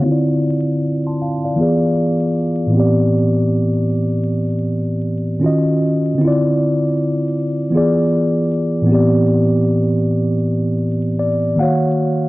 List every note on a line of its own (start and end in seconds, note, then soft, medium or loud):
0.00 1.52 D3 medium
0.00 1.54 C4 medium
0.05 1.55 E4 medium
0.05 1.57 F4 medium
0.12 0.83 D5 medium
1.07 1.20 A5 medium
1.07 1.19 C6 medium
1.22 1.43 F5 medium
1.22 1.44 A5 medium
1.44 1.61 D5 soft
1.44 1.81 F5 medium
1.56 2.68 E3 medium
1.56 2.71 B3 medium
1.56 2.74 F4 medium
1.61 2.75 G#4 medium
1.61 2.76 D5 medium
2.67 5.35 A2 medium
2.67 5.37 E3 medium
2.72 5.38 B3 medium
2.72 5.39 C4 soft
2.77 5.40 G4 medium
2.77 5.42 D5 medium
5.40 6.18 D#3 medium
5.40 6.19 C#4 medium
5.40 6.20 F4 medium
5.44 6.20 F#4 medium
5.44 6.21 D#5 medium
6.15 7.68 D3 medium
6.15 7.70 C4 medium
6.21 7.71 E4 medium
6.21 7.73 F4 medium
6.27 7.74 D5 medium
7.70 8.82 E3 medium
7.70 8.85 B3 medium
7.70 8.89 F4 medium
7.75 8.90 G#4 medium
7.75 8.91 D5 medium
8.82 11.50 A2 medium
8.82 11.51 E3 medium
8.87 11.53 B3 medium
8.87 11.54 C4 medium
8.92 11.55 G4 medium
8.92 11.18 D5 medium
11.19 11.55 D5 medium
11.56 12.29 D#3 medium
11.56 12.29 A#3 medium
11.56 12.29 F5 medium
11.56 12.29 F#5 medium
11.61 12.29 F#4 medium
11.61 12.29 C#5 medium